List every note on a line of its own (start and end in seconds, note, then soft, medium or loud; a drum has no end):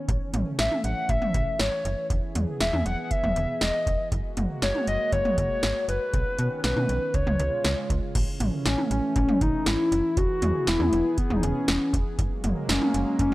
0.00 2.06 C#4 medium
0.08 0.19 A1 loud
0.08 4.08 E3 medium
0.08 2.08 A3 medium
0.08 kick loud
0.08 closed hi-hat medium
0.34 0.44 A1 loud
0.34 closed hi-hat medium
0.34 mid tom medium
0.59 0.69 A1 loud
0.59 0.83 E5 loud
0.59 snare loud
0.59 closed hi-hat medium
0.72 mid tom medium
0.84 0.94 A1 medium
0.84 1.11 F#5 loud
0.84 closed hi-hat medium
1.09 1.19 A1 loud
1.09 1.59 E5 loud
1.09 kick loud
1.09 closed hi-hat medium
1.22 mid tom loud
1.34 1.45 A1 loud
1.34 kick medium
1.34 closed hi-hat medium
1.59 1.70 G#1 medium
1.59 2.07 C#5 medium
1.59 snare loud
1.59 closed hi-hat medium
1.85 1.95 F#1 loud
1.85 closed hi-hat medium
2.10 2.20 E1 loud
2.10 4.10 B3 medium
2.10 4.10 G#4 medium
2.10 kick loud
2.10 closed hi-hat medium
2.35 2.46 E2 loud
2.35 closed hi-hat medium
2.35 mid tom medium
2.60 2.71 E1 loud
2.60 2.84 E5 loud
2.60 snare loud
2.60 closed hi-hat medium
2.73 2.83 E2 loud
2.73 mid tom loud
2.86 2.96 E1 loud
2.86 3.03 F#5 loud
2.86 closed hi-hat medium
3.04 3.12 F#5 medium
3.11 3.61 E5 loud
3.11 kick loud
3.11 closed hi-hat medium
3.24 3.34 E1 loud
3.24 mid tom loud
3.36 3.46 E1 loud
3.36 closed hi-hat medium
3.61 3.72 E1 medium
3.61 4.08 D#5 medium
3.61 snare loud
3.61 closed hi-hat medium
3.87 3.97 E1 loud
3.87 kick medium
3.87 closed hi-hat medium
4.12 4.22 F#1 loud
4.12 6.12 G#3 medium
4.12 6.12 A#3 medium
4.12 6.12 F#4 medium
4.12 kick loud
4.12 closed hi-hat medium
4.37 4.47 F#1 loud
4.37 closed hi-hat medium
4.37 mid tom medium
4.62 4.72 F#1 loud
4.62 4.86 C#5 loud
4.62 snare loud
4.62 closed hi-hat medium
4.75 mid tom medium
4.87 4.98 F#1 loud
4.87 5.11 D#5 loud
4.87 closed hi-hat medium
5.12 5.23 F#1 loud
5.12 5.36 C#5 loud
5.12 kick loud
5.12 closed hi-hat medium
5.25 mid tom medium
5.38 5.48 F#1 loud
5.38 5.85 C#5 loud
5.38 kick medium
5.38 closed hi-hat medium
5.63 5.73 G#1 medium
5.63 snare loud
5.63 closed hi-hat medium
5.88 5.99 F#1 loud
5.88 6.60 B4 loud
5.88 closed hi-hat medium
6.14 6.24 B1 loud
6.14 7.13 D#3 medium
6.14 7.13 B3 medium
6.14 7.13 C#4 medium
6.14 kick loud
6.14 closed hi-hat medium
6.39 6.49 B2 medium
6.39 closed hi-hat medium
6.64 6.74 B1 loud
6.64 7.16 B4 medium
6.64 snare loud
6.64 closed hi-hat medium
6.76 6.87 B2 medium
6.76 mid tom loud
6.89 6.99 B1 medium
6.89 closed hi-hat medium
7.14 7.24 C#2 loud
7.14 8.14 C#3 medium
7.14 8.14 G#3 medium
7.14 8.14 F4 medium
7.14 7.90 C#5 loud
7.14 kick medium
7.14 closed hi-hat medium
7.27 7.37 C#2 loud
7.27 mid tom loud
7.39 7.50 C#2 loud
7.39 closed hi-hat medium
7.64 7.75 C#2 loud
7.64 snare loud
7.64 closed hi-hat medium
7.90 8.00 C#2 loud
7.90 kick medium
7.90 closed hi-hat medium
8.15 8.25 A1 loud
8.15 12.15 E3 medium
8.15 10.15 A3 medium
8.15 10.15 C#4 medium
8.15 kick loud
8.15 closed hi-hat medium
8.15 crash loud
8.40 8.51 A1 loud
8.40 closed hi-hat medium
8.40 mid tom medium
8.66 8.76 A1 loud
8.66 8.89 C#4 medium
8.66 snare loud
8.66 closed hi-hat medium
8.78 mid tom loud
8.91 9.01 A1 medium
8.91 9.14 C#4 medium
8.91 closed hi-hat medium
9.16 9.26 A1 loud
9.16 9.39 C#4 loud
9.16 kick loud
9.16 closed hi-hat medium
9.29 mid tom loud
9.41 9.51 A1 loud
9.41 9.65 D#4 loud
9.41 kick medium
9.41 closed hi-hat medium
9.66 9.77 G#1 loud
9.66 10.19 E4 loud
9.66 snare loud
9.66 closed hi-hat medium
9.92 10.02 F#1 loud
9.92 closed hi-hat medium
10.17 10.27 E1 loud
10.17 12.17 B3 medium
10.17 10.69 F#4 loud
10.17 12.17 G#4 medium
10.17 kick loud
10.17 closed hi-hat medium
10.42 10.52 E2 loud
10.42 closed hi-hat medium
10.42 mid tom loud
10.67 10.78 E1 loud
10.67 11.17 E4 loud
10.67 snare loud
10.67 closed hi-hat medium
10.80 10.90 E2 loud
10.80 mid tom loud
10.93 11.03 E1 loud
10.93 closed hi-hat medium
11.18 11.35 B3 loud
11.18 kick loud
11.18 closed hi-hat medium
11.30 11.41 E1 loud
11.30 mid tom loud
11.36 11.45 D#4 medium
11.43 11.53 E1 loud
11.43 11.94 C#4 medium
11.43 closed hi-hat medium
11.68 11.78 E1 loud
11.68 snare loud
11.68 closed hi-hat medium
11.93 12.04 E1 loud
11.93 kick medium
11.93 closed hi-hat medium
12.19 12.29 F#1 loud
12.19 13.34 F#3 medium
12.19 13.34 G#3 medium
12.19 13.34 A#3 medium
12.19 kick loud
12.19 closed hi-hat medium
12.44 12.54 F#1 loud
12.44 closed hi-hat medium
12.44 mid tom loud
12.69 12.79 F#1 loud
12.69 13.16 C#4 medium
12.69 snare loud
12.69 closed hi-hat medium
12.82 mid tom loud
12.94 13.04 F#1 loud
12.94 closed hi-hat medium
13.19 13.30 F#1 loud
13.19 13.34 C#4 loud
13.19 kick loud
13.19 closed hi-hat medium